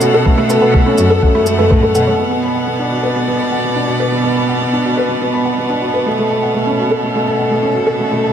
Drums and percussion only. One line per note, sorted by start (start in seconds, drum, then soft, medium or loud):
0.01 shaker medium
0.26 kick medium
0.50 shaker medium
0.74 kick medium
0.98 shaker medium
1.23 kick loud
1.46 shaker medium
1.71 kick loud
1.95 shaker medium